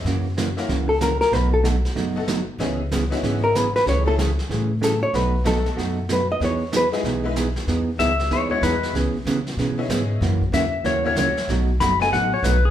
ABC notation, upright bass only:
X:1
M:4/4
L:1/8
Q:"Swing" 1/4=189
K:E
V:1 name="Upright bass" clef=bass
F,,4 C,,4 | B,,,4 F,,,4 | C,,4 G,,,4 | C,,4 A,,4 |
B,,,4 F,,4 | E,,4 B,,,4 | E,,2 C,,2 D,,2 E,,2 | C,, z C,2 B,,2 G,,2 |
F,,2 E,,2 D,,2 C,, z | B,,,2 F,,,2 A,,,2 B,,,2 |]